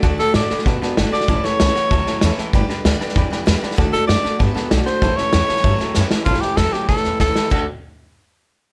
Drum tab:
CC |----------------|----------------|----------------|----------------|
HH |----p-------p---|----p-------p---|----p-------p---|----p-------p---|
SD |o-o-o-ooo-o-o-oo|o-o-o-o-o-o-o-o-|o-o-o-ooo-o-o-oo|o-o-o-o-o-o-o-o-|
BD |o-------o-------|o-------o-------|o-------o-------|o-------o-------|

CC |----------------|----------------|x---------------|
HH |----p-------p---|----p-------p---|----------------|
SD |o-o-o-ooo-o-o-o-|ooo-o-o-ooo-o-o-|----------------|
BD |o-------o-------|o---o---o---o---|o---------------|